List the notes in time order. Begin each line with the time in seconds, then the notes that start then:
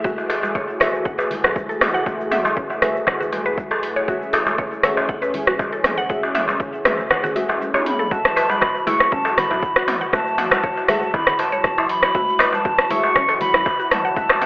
Already playing: E3 A3 G#4
0.04 A3 F#4 G#4 E5, kick, high conga, shaker
0.18 darbuka tek, shaker
0.30 A4, open hi-hat, darbuka ka, muted conga, shaker
0.43 darbuka ka, high conga, shaker
0.55 C#5, kick, darbuka tek, shaker
0.69 muted conga, shaker
0.80 A3 F#4 G#4 C#5 E5, cross-stick, open hi-hat, high conga, darbuka tek, low conga, shaker
0.95 shaker
1.05 F#1 F#5, kick, muted conga, shaker
1.18 B4, darbuka tek, shaker
1.31 open hi-hat, high conga, low conga, shaker
1.44 B1 F#4, cross-stick, muted conga, darbuka tek, shaker
1.56 kick, high conga, shaker
1.69 A4, shaker
1.81 cross-stick, mid tom, open hi-hat, muted conga, high conga, darbuka tek, shaker
1.94 F#5, shaker
2.06 F#1 A3 F#4 G#4 E5 F#5, kick, high conga, darbuka tek, shaker
2.21 shaker
2.31 E5, mid tom, open hi-hat, darbuka ka, muted conga, shaker
2.44 darbuka ka, high conga, darbuka tek, shaker
2.57 C#4, kick, shaker
2.70 muted conga, darbuka tek, shaker
2.82 A3 F#4 G#4 B4 E5, cross-stick, open hi-hat, high conga, low conga, shaker
2.96 shaker
3.07 F#1 F#5, kick, cross-stick, muted conga, darbuka tek, high conga, low conga, shaker
3.20 F#4, low conga, shaker
3.33 open hi-hat, darbuka tek, high conga, shaker
3.46 B4, muted conga, shaker
3.57 kick, high conga, shaker
3.71 A4, darbuka ka, darbuka tek, shaker
3.82 open hi-hat, muted conga, shaker
3.96 C#5, darbuka tek, shaker
4.08 A3 C#4 F#4 G#4 E5, kick, high conga, shaker
4.22 shaker
4.33 A4, open hi-hat, muted conga, darbuka ka, darbuka tek, shaker
4.47 darbuka ka, high conga, shaker
4.58 C#5, kick, darbuka tek, shaker
4.72 muted conga, shaker
4.83 A3 F#4 G#4 C#5 E5, cross-stick, open hi-hat, high conga, low conga, shaker
4.97 darbuka tek, shaker
5.09 F#1 F#5, kick, muted conga, shaker
5.22 B4, darbuka tek, shaker
5.34 open hi-hat, high conga, low conga, shaker
5.47 B1 F#4, cross-stick, muted conga, shaker
5.59 kick, darbuka tek, high conga, shaker
5.72 A4, shaker
5.84 cross-stick, mid tom, open hi-hat, muted conga, darbuka tek, high conga, shaker
5.98 F#5, shaker
6.09 F#1 A3 F#4 G#4 E5 F#5, kick, high conga, shaker
6.23 darbuka tek, shaker
6.35 E5, mid tom, open hi-hat, darbuka ka, muted conga, shaker
6.48 darbuka ka, darbuka tek, high conga, shaker
6.60 C#4, kick, shaker
6.73 muted conga, shaker
6.85 A3 F#4 G#4 B4 E5, cross-stick, mid tom, open hi-hat, darbuka tek, high conga, low conga, shaker
6.99 shaker
7.10 F#5, cross-stick, muted conga, darbuka tek, high conga, low conga, shaker
7.24 F#4, low conga, shaker
7.35 A3 F#4 G#4 E5, open hi-hat, high conga, shaker
7.49 F#4, muted conga, darbuka tek, shaker
7.61 high conga, shaker
7.74 C#5, high tom, darbuka ka, darbuka tek, shaker
7.86 B5, open hi-hat, mid tom, muted conga, shaker
7.99 A4, mid tom, shaker
8.11 E3 F#3 G#3 A3 F#4 E5 A5, kick, high conga, shaker
8.25 cross-stick, darbuka tek, shaker
8.36 B4, open hi-hat, muted conga, darbuka ka, shaker
8.49 B5, darbuka ka, high conga, shaker
8.61 F#4, kick, cross-stick, darbuka tek, shaker
8.75 muted conga, shaker
8.86 A3 E4 F#4 G#4 E5 C#6, open hi-hat, high conga, darbuka tek, low conga, shaker
9.00 cross-stick, shaker
9.12 F#1 C#4 A5, kick, muted conga, high conga, shaker
9.25 A4, darbuka tek, shaker
9.37 B5, cross-stick, open hi-hat, high conga, low conga, shaker
9.50 B1 E4, darbuka tek, shaker
9.62 kick, muted conga, shaker
9.76 F#4, cross-stick, shaker
9.88 mid tom, open hi-hat, high conga, darbuka tek, shaker
10.01 F#5, muted conga, shaker
10.13 F#1 G#3 A3 F#4 E5 A5, kick, cross-stick, high conga, darbuka tek, shaker
10.27 shaker
10.38 F#5, mid tom, open hi-hat, darbuka ka, muted conga, shaker
10.51 A5, cross-stick, darbuka ka, darbuka tek, high conga, shaker
10.63 C#5, kick, shaker
10.77 muted conga, darbuka tek, shaker
10.88 A3 F#4 G#4 E5 F#5 A5, cross-stick, open hi-hat, high conga, low conga, shaker
11.03 shaker
11.14 F#1 E4 B5, kick, muted conga, darbuka tek, low conga, shaker
11.27 F#5, cross-stick, low conga, shaker
11.39 A5, open hi-hat, darbuka tek, shaker
11.52 C#5, high conga, shaker
11.64 kick, cross-stick, shaker
11.78 E4, darbuka ka, darbuka tek, shaker
11.89 B5, open hi-hat, shaker
12.02 C#5, cross-stick, muted conga, darbuka tek, shaker
12.14 G#3 A3 F#4 E5, kick, high conga, shaker
12.29 shaker
12.39 B4, cross-stick, open hi-hat, darbuka ka, muted conga, darbuka tek, shaker
12.53 A5, darbuka ka, high conga, shaker
12.65 F#4, kick, darbuka tek, shaker
12.79 cross-stick, muted conga, shaker
12.90 A3 E4 F#4 G#4 E5 C#6, open hi-hat, high conga, low conga, shaker
13.03 darbuka tek, shaker
13.16 F#1 C#4, kick, cross-stick, muted conga, high conga, shaker
13.29 A4, darbuka tek, shaker
13.40 B5, open hi-hat, high conga, low conga, shaker
13.54 B1 E4, cross-stick, shaker
13.66 kick, darbuka tek, shaker
13.79 F#4, shaker
13.91 A5, cross-stick, mid tom, open hi-hat, darbuka tek, high conga, shaker
14.05 F#5, muted conga, shaker
14.16 F#1 G#3 A3 F#4 E5, kick, high conga, shaker
14.29 cross-stick, darbuka tek, shaker
14.42 F#5, mid tom, open hi-hat, darbuka ka, muted conga, shaker